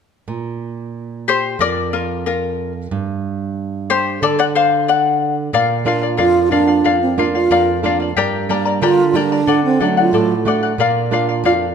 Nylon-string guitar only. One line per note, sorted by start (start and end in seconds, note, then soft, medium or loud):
0.28 1.55 A#2 soft
1.59 2.87 F2 medium
2.91 4.19 G2 medium
4.22 5.50 D3 soft
5.53 6.17 A#2 medium
5.85 6.38 A#3 soft
5.85 6.39 D4 soft
5.85 6.39 F4 medium
6.19 6.83 F2 medium
6.52 7.05 A#3 soft
6.52 7.05 D4 soft
6.52 7.05 F4 soft
6.85 7.49 F2 medium
7.18 7.70 A#3 soft
7.18 7.71 D4 soft
7.18 7.71 F4 medium
7.51 8.14 F2 medium
7.83 8.10 A#3 soft
7.83 8.10 D4 soft
7.83 8.10 F4 medium
8.16 8.80 G2 medium
8.49 9.02 G3 soft
8.49 9.02 A#3 soft
8.49 9.02 D4 medium
8.82 9.46 D3 medium
9.14 9.40 G3 soft
9.14 9.41 A#3 soft
9.14 9.41 D4 medium
9.48 10.11 D3 medium
9.80 10.33 F#3 medium
9.80 10.33 A3 soft
9.80 10.33 D4 soft
10.13 10.77 A2 medium
10.45 10.72 A3 soft
10.45 10.72 D4 soft
10.45 10.72 F#4 soft
10.78 11.42 A#2 medium
11.11 11.64 A#3 soft
11.11 11.64 D4 soft
11.11 11.64 F4 soft
11.44 11.75 F2 medium